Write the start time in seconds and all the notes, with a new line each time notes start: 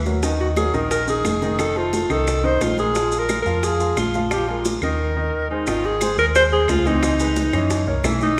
Already playing: D#2
0.06 F#3 F#4 A#4, high bongo, high conga, maracas
0.23 D#3 D#4 D#5, high bongo, maracas
0.40 F#4, high bongo, high conga
0.56 F#3 F#4 G#4 A#4, high bongo, high conga, claves, maracas
0.73 A#1 D#3 D#4 A#4 D#5, high bongo, high conga, maracas
0.90 A#4, high bongo, high conga, maracas
1.07 D#3 D#4 G#4 D#5, high conga, maracas
1.24 F1, high bongo, low bongo, high conga, claves, maracas
1.42 D#3 D#4 D#5, high bongo, high conga, maracas
1.59 D#3 D#4 A4 D#5, high bongo, claves, maracas
1.75 A3 F4 A4 C5, high bongo, high conga
1.93 high bongo, high conga, maracas
2.09 C2 D#3 D#4 A4 D#5, high bongo, high conga, claves, maracas
2.27 high bongo, high conga, maracas
2.44 D#3 D#4 C5 D#5, high conga
2.61 A#1 F4, high bongo, low bongo, high conga, claves, maracas
2.78 G#3 G#4 A#4, high bongo, high conga, maracas
2.95 F3 F4 F5, high bongo, high conga, maracas
3.12 high bongo, high conga, maracas
3.19 A#4
3.29 G#3 G#4 A#4, high bongo, high conga, claves, maracas
3.42 F2 F3 A#4, maracas
3.46 F4 F5, high bongo, high conga
3.63 G#4, high bongo, high conga, maracas
3.80 F3 F4 F5, high conga, maracas
3.97 A#1 F4, high bongo, low bongo, high conga, claves, maracas
4.14 F3 F4 F5, high bongo, high conga, maracas
4.31 F3 F4 G4 F5, high bongo, claves, maracas
4.48 G#3 F4 G#4 A#4, high bongo, high conga
4.65 high bongo, high conga, maracas
4.81 D#2 D#3 D#4 A#4 D#5, high bongo, high conga, claves, maracas
5.17 D#3 D#4 D#5
5.50 G#3 D#4 G#4 C5
5.67 G#1 D#3 D#4 F4 D#5, high bongo, high conga, maracas
5.85 G#4, high bongo, high conga
6.01 G#3 G#4 C5, high bongo, high conga, claves, maracas
6.17 D#2 A#4, high bongo, high conga, maracas
6.35 G#3 G#4 C5, high bongo, high conga, maracas
6.52 G#3 G#4 C5, high conga
6.68 C#2 F4, high bongo, low bongo, high conga, claves, maracas
6.86 E3 C4 D#4 D#5, high bongo, high conga, maracas
7.03 high bongo, claves, maracas
7.20 G#3 G#4 B4, high bongo, high conga, maracas
7.36 high bongo, high conga, maracas
7.53 F#2 E3 C#4 D#5, high bongo, high conga, low conga, claves, maracas
7.70 high bongo, high conga, maracas
7.87 C2 A#3 A#4 C#5, high conga
8.04 B1 E3 E4 E5, high bongo, low bongo, high conga, claves, maracas
8.20 D#4, high bongo, high conga, maracas